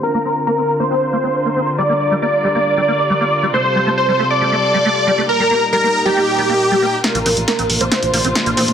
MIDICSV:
0, 0, Header, 1, 8, 480
1, 0, Start_track
1, 0, Key_signature, -2, "major"
1, 0, Tempo, 437956
1, 37, Time_signature, 4, 2, 24, 8
1, 9571, End_track
2, 0, Start_track
2, 0, Title_t, "Digital synth lead"
2, 0, Program_c, 0, 84
2, 35, Note_on_c, 0, 70, 98
2, 435, Note_off_c, 0, 70, 0
2, 514, Note_on_c, 0, 70, 93
2, 814, Note_off_c, 0, 70, 0
2, 874, Note_on_c, 0, 72, 99
2, 1860, Note_off_c, 0, 72, 0
2, 1953, Note_on_c, 0, 74, 95
2, 2354, Note_off_c, 0, 74, 0
2, 2436, Note_on_c, 0, 74, 94
2, 2735, Note_off_c, 0, 74, 0
2, 2795, Note_on_c, 0, 74, 99
2, 3780, Note_off_c, 0, 74, 0
2, 3878, Note_on_c, 0, 72, 99
2, 4276, Note_off_c, 0, 72, 0
2, 4355, Note_on_c, 0, 72, 94
2, 4655, Note_off_c, 0, 72, 0
2, 4717, Note_on_c, 0, 74, 97
2, 5701, Note_off_c, 0, 74, 0
2, 5798, Note_on_c, 0, 70, 101
2, 6196, Note_off_c, 0, 70, 0
2, 6278, Note_on_c, 0, 70, 92
2, 6577, Note_off_c, 0, 70, 0
2, 6639, Note_on_c, 0, 67, 101
2, 7622, Note_off_c, 0, 67, 0
2, 7717, Note_on_c, 0, 70, 96
2, 8116, Note_off_c, 0, 70, 0
2, 8194, Note_on_c, 0, 70, 90
2, 8495, Note_off_c, 0, 70, 0
2, 8557, Note_on_c, 0, 72, 98
2, 9541, Note_off_c, 0, 72, 0
2, 9571, End_track
3, 0, Start_track
3, 0, Title_t, "Supersaw synth"
3, 0, Program_c, 1, 81
3, 35, Note_on_c, 1, 70, 99
3, 435, Note_off_c, 1, 70, 0
3, 514, Note_on_c, 1, 70, 95
3, 815, Note_off_c, 1, 70, 0
3, 875, Note_on_c, 1, 72, 96
3, 1860, Note_off_c, 1, 72, 0
3, 1955, Note_on_c, 1, 74, 100
3, 2355, Note_off_c, 1, 74, 0
3, 2436, Note_on_c, 1, 74, 93
3, 2736, Note_off_c, 1, 74, 0
3, 2794, Note_on_c, 1, 74, 93
3, 3780, Note_off_c, 1, 74, 0
3, 3878, Note_on_c, 1, 72, 101
3, 4276, Note_off_c, 1, 72, 0
3, 4358, Note_on_c, 1, 72, 93
3, 4657, Note_off_c, 1, 72, 0
3, 4717, Note_on_c, 1, 74, 95
3, 5701, Note_off_c, 1, 74, 0
3, 5796, Note_on_c, 1, 70, 100
3, 6195, Note_off_c, 1, 70, 0
3, 6277, Note_on_c, 1, 70, 96
3, 6576, Note_off_c, 1, 70, 0
3, 6635, Note_on_c, 1, 67, 97
3, 7620, Note_off_c, 1, 67, 0
3, 7716, Note_on_c, 1, 70, 103
3, 8116, Note_off_c, 1, 70, 0
3, 8194, Note_on_c, 1, 70, 97
3, 8495, Note_off_c, 1, 70, 0
3, 8557, Note_on_c, 1, 72, 96
3, 9541, Note_off_c, 1, 72, 0
3, 9571, End_track
4, 0, Start_track
4, 0, Title_t, "String section"
4, 0, Program_c, 2, 48
4, 36, Note_on_c, 2, 50, 75
4, 36, Note_on_c, 2, 60, 67
4, 36, Note_on_c, 2, 65, 65
4, 37, Note_on_c, 2, 70, 79
4, 1937, Note_off_c, 2, 60, 0
4, 1956, Note_on_c, 2, 55, 67
4, 3838, Note_off_c, 2, 50, 0
4, 3838, Note_off_c, 2, 70, 0
4, 3877, Note_on_c, 2, 69, 83
4, 3878, Note_on_c, 2, 48, 75
4, 5753, Note_off_c, 2, 65, 0
4, 5778, Note_off_c, 2, 48, 0
4, 5778, Note_off_c, 2, 69, 0
4, 5795, Note_on_c, 2, 63, 70
4, 5795, Note_on_c, 2, 70, 82
4, 5796, Note_on_c, 2, 46, 76
4, 7672, Note_off_c, 2, 55, 0
4, 7697, Note_off_c, 2, 46, 0
4, 7697, Note_off_c, 2, 63, 0
4, 7697, Note_off_c, 2, 70, 0
4, 7716, Note_on_c, 2, 48, 76
4, 7716, Note_on_c, 2, 58, 72
4, 7716, Note_on_c, 2, 62, 68
4, 7716, Note_on_c, 2, 65, 82
4, 9571, Note_off_c, 2, 48, 0
4, 9571, Note_off_c, 2, 58, 0
4, 9571, Note_off_c, 2, 62, 0
4, 9571, Note_off_c, 2, 65, 0
4, 9571, End_track
5, 0, Start_track
5, 0, Title_t, "Acid bass"
5, 0, Program_c, 3, 38
5, 156, Note_on_c, 3, 58, 74
5, 197, Note_off_c, 3, 58, 0
5, 277, Note_on_c, 3, 60, 72
5, 317, Note_off_c, 3, 60, 0
5, 516, Note_on_c, 3, 58, 80
5, 556, Note_off_c, 3, 58, 0
5, 636, Note_on_c, 3, 60, 72
5, 677, Note_off_c, 3, 60, 0
5, 875, Note_on_c, 3, 58, 72
5, 916, Note_off_c, 3, 58, 0
5, 994, Note_on_c, 3, 60, 77
5, 1036, Note_off_c, 3, 60, 0
5, 1235, Note_on_c, 3, 58, 75
5, 1276, Note_off_c, 3, 58, 0
5, 1356, Note_on_c, 3, 60, 74
5, 1396, Note_off_c, 3, 60, 0
5, 1596, Note_on_c, 3, 58, 71
5, 1636, Note_off_c, 3, 58, 0
5, 1715, Note_on_c, 3, 60, 72
5, 1756, Note_off_c, 3, 60, 0
5, 1956, Note_on_c, 3, 55, 81
5, 1997, Note_off_c, 3, 55, 0
5, 2075, Note_on_c, 3, 58, 75
5, 2116, Note_off_c, 3, 58, 0
5, 2315, Note_on_c, 3, 55, 74
5, 2356, Note_off_c, 3, 55, 0
5, 2435, Note_on_c, 3, 58, 79
5, 2476, Note_off_c, 3, 58, 0
5, 2676, Note_on_c, 3, 55, 75
5, 2717, Note_off_c, 3, 55, 0
5, 2797, Note_on_c, 3, 58, 72
5, 2837, Note_off_c, 3, 58, 0
5, 3037, Note_on_c, 3, 55, 75
5, 3077, Note_off_c, 3, 55, 0
5, 3158, Note_on_c, 3, 58, 74
5, 3197, Note_off_c, 3, 58, 0
5, 3397, Note_on_c, 3, 55, 79
5, 3437, Note_off_c, 3, 55, 0
5, 3516, Note_on_c, 3, 58, 70
5, 3557, Note_off_c, 3, 58, 0
5, 3758, Note_on_c, 3, 55, 74
5, 3798, Note_off_c, 3, 55, 0
5, 3876, Note_on_c, 3, 57, 81
5, 3917, Note_off_c, 3, 57, 0
5, 4117, Note_on_c, 3, 55, 74
5, 4157, Note_off_c, 3, 55, 0
5, 4236, Note_on_c, 3, 57, 72
5, 4277, Note_off_c, 3, 57, 0
5, 4476, Note_on_c, 3, 55, 74
5, 4517, Note_off_c, 3, 55, 0
5, 4596, Note_on_c, 3, 57, 77
5, 4637, Note_off_c, 3, 57, 0
5, 4837, Note_on_c, 3, 55, 80
5, 4877, Note_off_c, 3, 55, 0
5, 4957, Note_on_c, 3, 57, 72
5, 4997, Note_off_c, 3, 57, 0
5, 5197, Note_on_c, 3, 55, 75
5, 5237, Note_off_c, 3, 55, 0
5, 5317, Note_on_c, 3, 57, 78
5, 5357, Note_off_c, 3, 57, 0
5, 5557, Note_on_c, 3, 55, 73
5, 5597, Note_off_c, 3, 55, 0
5, 5676, Note_on_c, 3, 57, 70
5, 5717, Note_off_c, 3, 57, 0
5, 5917, Note_on_c, 3, 55, 73
5, 5957, Note_off_c, 3, 55, 0
5, 6037, Note_on_c, 3, 58, 73
5, 6077, Note_off_c, 3, 58, 0
5, 6276, Note_on_c, 3, 55, 78
5, 6317, Note_off_c, 3, 55, 0
5, 6396, Note_on_c, 3, 58, 74
5, 6437, Note_off_c, 3, 58, 0
5, 6637, Note_on_c, 3, 55, 73
5, 6677, Note_off_c, 3, 55, 0
5, 6758, Note_on_c, 3, 58, 79
5, 6797, Note_off_c, 3, 58, 0
5, 6996, Note_on_c, 3, 55, 72
5, 7037, Note_off_c, 3, 55, 0
5, 7117, Note_on_c, 3, 58, 73
5, 7157, Note_off_c, 3, 58, 0
5, 7358, Note_on_c, 3, 55, 72
5, 7397, Note_off_c, 3, 55, 0
5, 7477, Note_on_c, 3, 58, 73
5, 7517, Note_off_c, 3, 58, 0
5, 7836, Note_on_c, 3, 58, 75
5, 7876, Note_off_c, 3, 58, 0
5, 7957, Note_on_c, 3, 60, 75
5, 7997, Note_off_c, 3, 60, 0
5, 8198, Note_on_c, 3, 58, 79
5, 8237, Note_off_c, 3, 58, 0
5, 8317, Note_on_c, 3, 60, 74
5, 8357, Note_off_c, 3, 60, 0
5, 8558, Note_on_c, 3, 58, 77
5, 8597, Note_off_c, 3, 58, 0
5, 8677, Note_on_c, 3, 60, 80
5, 8717, Note_off_c, 3, 60, 0
5, 8917, Note_on_c, 3, 58, 76
5, 8957, Note_off_c, 3, 58, 0
5, 9038, Note_on_c, 3, 60, 75
5, 9078, Note_off_c, 3, 60, 0
5, 9278, Note_on_c, 3, 58, 71
5, 9318, Note_off_c, 3, 58, 0
5, 9397, Note_on_c, 3, 60, 74
5, 9437, Note_off_c, 3, 60, 0
5, 9571, End_track
6, 0, Start_track
6, 0, Title_t, "Analog synth bass"
6, 0, Program_c, 4, 38
6, 7836, Note_on_c, 4, 34, 84
6, 7933, Note_off_c, 4, 34, 0
6, 7956, Note_on_c, 4, 34, 95
6, 8053, Note_off_c, 4, 34, 0
6, 8076, Note_on_c, 4, 34, 86
6, 8173, Note_off_c, 4, 34, 0
6, 8316, Note_on_c, 4, 34, 81
6, 8413, Note_off_c, 4, 34, 0
6, 8436, Note_on_c, 4, 34, 94
6, 8533, Note_off_c, 4, 34, 0
6, 8556, Note_on_c, 4, 34, 84
6, 8653, Note_off_c, 4, 34, 0
6, 8796, Note_on_c, 4, 34, 82
6, 8893, Note_off_c, 4, 34, 0
6, 8916, Note_on_c, 4, 34, 92
6, 9013, Note_off_c, 4, 34, 0
6, 9035, Note_on_c, 4, 34, 89
6, 9133, Note_off_c, 4, 34, 0
6, 9274, Note_on_c, 4, 34, 83
6, 9372, Note_off_c, 4, 34, 0
6, 9395, Note_on_c, 4, 46, 96
6, 9493, Note_off_c, 4, 46, 0
6, 9516, Note_on_c, 4, 46, 88
6, 9571, Note_off_c, 4, 46, 0
6, 9571, End_track
7, 0, Start_track
7, 0, Title_t, "Riser"
7, 0, Program_c, 5, 103
7, 7717, Note_on_c, 5, 60, 72
7, 9571, Note_off_c, 5, 60, 0
7, 9571, End_track
8, 0, Start_track
8, 0, Title_t, "Drums"
8, 7716, Note_on_c, 9, 38, 45
8, 7716, Note_on_c, 9, 42, 75
8, 7825, Note_off_c, 9, 38, 0
8, 7825, Note_off_c, 9, 42, 0
8, 7837, Note_on_c, 9, 42, 52
8, 7946, Note_off_c, 9, 42, 0
8, 7955, Note_on_c, 9, 46, 100
8, 8064, Note_off_c, 9, 46, 0
8, 8076, Note_on_c, 9, 42, 48
8, 8185, Note_off_c, 9, 42, 0
8, 8196, Note_on_c, 9, 38, 46
8, 8196, Note_on_c, 9, 42, 77
8, 8305, Note_off_c, 9, 38, 0
8, 8305, Note_off_c, 9, 42, 0
8, 8316, Note_on_c, 9, 42, 53
8, 8426, Note_off_c, 9, 42, 0
8, 8435, Note_on_c, 9, 46, 96
8, 8545, Note_off_c, 9, 46, 0
8, 8556, Note_on_c, 9, 42, 53
8, 8666, Note_off_c, 9, 42, 0
8, 8676, Note_on_c, 9, 38, 48
8, 8676, Note_on_c, 9, 42, 79
8, 8785, Note_off_c, 9, 38, 0
8, 8785, Note_off_c, 9, 42, 0
8, 8796, Note_on_c, 9, 42, 51
8, 8905, Note_off_c, 9, 42, 0
8, 8917, Note_on_c, 9, 46, 100
8, 9026, Note_off_c, 9, 46, 0
8, 9037, Note_on_c, 9, 42, 49
8, 9146, Note_off_c, 9, 42, 0
8, 9156, Note_on_c, 9, 38, 50
8, 9156, Note_on_c, 9, 42, 76
8, 9266, Note_off_c, 9, 38, 0
8, 9266, Note_off_c, 9, 42, 0
8, 9276, Note_on_c, 9, 42, 52
8, 9385, Note_off_c, 9, 42, 0
8, 9395, Note_on_c, 9, 46, 98
8, 9505, Note_off_c, 9, 46, 0
8, 9516, Note_on_c, 9, 42, 50
8, 9571, Note_off_c, 9, 42, 0
8, 9571, End_track
0, 0, End_of_file